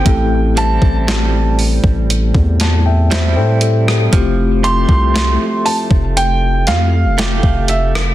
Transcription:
<<
  \new Staff \with { instrumentName = "Grand piano" } { \time 4/4 \key a \phrygian \tempo 4 = 59 g''8 a''4 r2 r8 | r8 c'''4 a''8 g''8 f''4 e''8 | }
  \new Staff \with { instrumentName = "Tine electric piano" } { \time 4/4 \key a \phrygian << { r2 r8 a''16 <e'' g''>16 <c'' e''>16 <a' c'' g''>16 a'16 e'16~ | e'16 r2. r8. | } \\ { <a c' e' g' a'>1 | <a c' f' g'>1 | } >> }
  \new Staff \with { instrumentName = "Clean electric guitar" } { \time 4/4 \key a \phrygian a,8 <g c' e'>8 g2 <g c' e'>4 | f8 <a g'>8 a2 <a g'>4 | }
  \new Staff \with { instrumentName = "808-style bass" } { \clef bass \time 4/4 \key a \phrygian a,,8. a,,4 a,,8 e,4 a,8. | f,,8. c,8 r8 f,,8. f,16. f,,16. f,,8. | }
  \new DrumStaff \with { instrumentName = "Drums" } \drummode { \time 4/4 <hh bd>8 hh16 bd16 <hh sn>8 hho16 bd16 hh16 bd16 <hh sn>8 <hh sn>8 hh16 ss16 | <hh bd>8 hh16 bd16 <hh sn>8 hho16 bd16 hh8 <hh sn>8 <hh sn>16 bd16 hh16 ss16 | }
>>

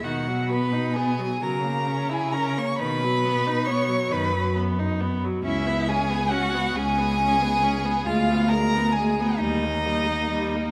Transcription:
<<
  \new Staff \with { instrumentName = "Violin" } { \time 6/8 \key b \major \tempo 4. = 45 fis''8 b''8 gis''8 ais''8. gis''16 ais''16 cis'''16 | b''4 cis'''8 b''8 r4 | e''8 gis''8 fis''8 gis''4. | eis''8 ais''8 gis''8 dis''4. | }
  \new Staff \with { instrumentName = "Violin" } { \time 6/8 \key b \major fis'8 b'8 gis'8 ais'8. gis'16 ais'16 cis''16 | b'4 cis''8 b'8 r4 | e'8 gis'8 fis'8 gis'4. | eis'8 ais'8 gis'8 dis'4. | }
  \new Staff \with { instrumentName = "Viola" } { \time 6/8 \key b \major dis16 fis16 b16 dis'16 b16 fis16 fis16 ais16 cis'16 e'16 cis'16 ais16 | dis16 fis16 b16 dis'16 b16 fis16 dis16 fis16 b16 dis'16 b16 fis16 | cis'16 b16 cis'16 b16 cis'16 b16 cis'16 b16 cis'16 b16 cis'16 b16 | gis16 b16 gis16 b16 gis16 b16 g16 ais16 g16 ais16 g16 ais16 | }
  \new Staff \with { instrumentName = "Cello" } { \clef bass \time 6/8 \key b \major b,4. cis4. | b,4. fis,4. | cis,4. cis,4. | d,4. dis,4. | }
>>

